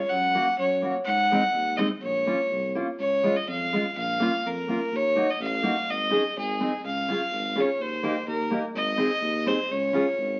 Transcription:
Already playing: fiddle C#5
0.10 tuba F#2, fiddle F#5
0.35 steel-string acoustic guitar A#3 C#4 F#4
0.58 tuba F#2, fiddle C#5
0.82 steel-string acoustic guitar A#3 C#4 F#4
1.05 tuba G#2, fiddle F#5
1.31 steel-string acoustic guitar G#3 C4 D#4
1.54 tuba D#2
1.77 steel-string acoustic guitar G#3 C4 D#4, fiddle D#5
2.01 tuba A#1, fiddle C#5
2.27 steel-string acoustic guitar A#3 C#4 F4
2.50 tuba C2
2.75 steel-string acoustic guitar A#3 C#4 F4
2.99 tuba C#2, fiddle C#5
3.23 steel-string acoustic guitar G#3 C#4 F4
3.36 fiddle D#5
3.47 tuba F2, fiddle F5
3.73 steel-string acoustic guitar G#3 C#4 F4
3.96 tuba A#1, fiddle F5
4.20 steel-string acoustic guitar A#3 C#4 F4
4.45 tuba F2, fiddle A#4
4.68 steel-string acoustic guitar A#3 C#4 F4
4.92 tuba D#2, fiddle C#5
5.16 steel-string acoustic guitar A#3 D#4 F#4
5.30 fiddle D#5
5.39 tuba A1, fiddle F5
5.63 steel-string acoustic guitar A#3 D#4 F#4
5.87 tuba G#1, fiddle D#5
6.10 steel-string acoustic guitar C#4 D#4 G#4
6.36 tuba G#1, fiddle G#4
6.60 steel-string acoustic guitar C4 D#4 G#4
6.84 tuba C#2, fiddle F5
7.09 steel-string acoustic guitar C#4 F4 G#4
7.32 tuba G#1
7.56 steel-string acoustic guitar C#4 F4 G#4
7.60 fiddle C#5
7.79 tuba D#2, fiddle C5
8.03 steel-string acoustic guitar A#3 D#4 G4
8.27 tuba D#2, fiddle A#4
8.51 steel-string acoustic guitar A#3 D#4 G4
8.74 tuba G#1, fiddle D#5
8.97 steel-string acoustic guitar C4 D#4 G#4
9.21 tuba D#2
9.46 steel-string acoustic guitar C4 D#4 G#4, fiddle C5
9.70 tuba C#2, fiddle C#5
9.93 steel-string acoustic guitar C#4 F4 G#4
10.18 tuba G#1

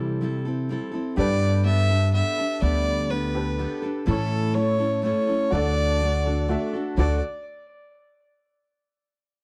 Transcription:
Already playing: upright bass C3, steel-string acoustic guitar E3 G3 C4 E4 A4, upright piano E4 A4 C5
0.21 steel-string acoustic guitar G3 C4 E4 A4
0.45 steel-string acoustic guitar C4 E4 A4
0.69 steel-string acoustic guitar G3 C4 E4 A4
0.92 steel-string acoustic guitar C4 E4 A4
1.16 upright bass G2, steel-string acoustic guitar G3 B3 D4 G4 A4, upright piano G4 A4, fiddle D5
1.20 upright piano B4
1.65 steel-string acoustic guitar B3 D4 G4 A4, fiddle E5
1.89 steel-string acoustic guitar D4 G4 A4
2.13 steel-string acoustic guitar B3 D4 G4 A4, fiddle E5
2.38 steel-string acoustic guitar D4 G4 A4
2.62 upright bass D2, steel-string acoustic guitar G3 B3 D4 G4 A4, fiddle D5
3.10 steel-string acoustic guitar B3 D4 G4 A4, fiddle B4
3.34 upright piano G4 A4 B4
3.58 steel-string acoustic guitar B3 D4 G4 A4
3.82 steel-string acoustic guitar D4 G4 A4
4.06 steel-string acoustic guitar A2 E3 A3 C#4 E4 A4, upright bass A2, upright piano E4 A4, fiddle A4
4.10 upright piano C#5
4.55 steel-string acoustic guitar A3 C#4 E4 A4, fiddle C#5
4.79 steel-string acoustic guitar A3 C#4 E4 A4
5.03 steel-string acoustic guitar A3 C#4 E4 A4, fiddle C#5
5.27 steel-string acoustic guitar A3 C#4 E4 A4
5.51 upright bass D2, steel-string acoustic guitar D3 A3 D4 F#4, upright piano F#4 A4, fiddle D5
5.55 steel-string acoustic guitar A4, upright piano D5
6.02 steel-string acoustic guitar A3 D4 F#4 A4
6.26 steel-string acoustic guitar D4 F#4 A4
6.48 steel-string acoustic guitar A3 D4 F#4 A4, upright piano F#4 A4 E5
6.73 steel-string acoustic guitar D4 F#4 A4
6.97 upright bass D2, steel-string acoustic guitar D3 A3 D4 F#4 A4, upright piano F#4 A4 D5, fiddle D5

